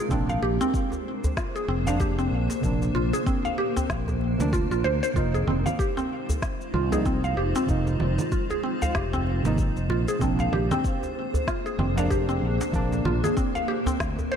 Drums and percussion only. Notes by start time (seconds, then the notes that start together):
0.11 kick, cabasa
0.29 djembe tone, cabasa
0.61 djembe tone, cabasa
0.74 kick, cabasa
0.92 djembe tone, cabasa
1.24 djembe bass, cabasa
1.37 kick, snare, cabasa
1.56 cabasa
1.87 djembe slap, djembe tone, cabasa
2.00 kick, djembe slap, cabasa
2.19 cabasa
2.50 djembe slap, cabasa
2.63 kick, cabasa
2.82 djembe tone, cabasa
2.96 djembe slap
3.14 cabasa
3.26 kick, cabasa
3.45 djembe tone, cabasa
3.77 djembe bass, cabasa
3.90 kick, snare, cabasa
4.08 djembe bass, cabasa
4.21 djembe tone
4.40 djembe slap, cabasa
4.53 kick, cabasa
4.72 djembe slap, cabasa
4.85 djembe slap
5.03 cabasa
5.16 kick, cabasa
5.35 djembe tone, cabasa
5.48 low conga
5.66 djembe tone, low conga, cabasa
5.79 kick, cabasa
5.97 djembe tone, cabasa
6.29 djembe bass, cabasa
6.42 kick, snare, cabasa
6.61 cabasa
6.74 low conga
6.92 djembe slap, djembe tone, cabasa
7.05 kick, djembe slap, cabasa
7.24 cabasa
7.55 djembe slap, cabasa
7.69 kick, cabasa
7.87 djembe tone, cabasa
8.00 djembe slap, low conga
8.19 low conga, cabasa
8.32 kick, cabasa
8.50 djembe tone, cabasa
8.82 djembe bass, cabasa
8.95 kick, snare, cabasa
9.14 djembe bass, cabasa
9.27 djembe tone
9.45 djembe slap, cabasa
9.58 kick, cabasa
9.76 djembe slap, cabasa
9.90 djembe slap
10.08 cabasa
10.21 kick, cabasa
10.39 djembe tone, cabasa
10.53 low conga
10.71 djembe tone, low conga, cabasa
10.84 kick, cabasa
11.03 djembe tone, cabasa
11.34 djembe bass, cabasa
11.47 kick, snare, cabasa
11.66 cabasa
11.79 low conga
11.97 djembe slap, djembe tone, cabasa
12.11 kick, djembe slap, cabasa
12.29 cabasa
12.61 djembe slap, cabasa
12.74 kick, cabasa
12.92 djembe tone, cabasa
13.05 djembe slap, low conga
13.24 djembe tone, low conga, cabasa
13.37 kick, cabasa
13.55 djembe tone, cabasa
13.86 djembe bass, cabasa
14.00 kick, snare, cabasa
14.19 djembe bass, cabasa
14.32 djembe tone